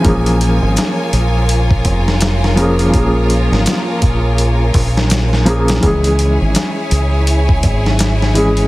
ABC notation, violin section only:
X:1
M:4/4
L:1/8
Q:"Swing 16ths" 1/4=83
K:Bbdor
V:1 name="Violin section"
[FBda]8- | [FBda]8 | [_FAda]8 |]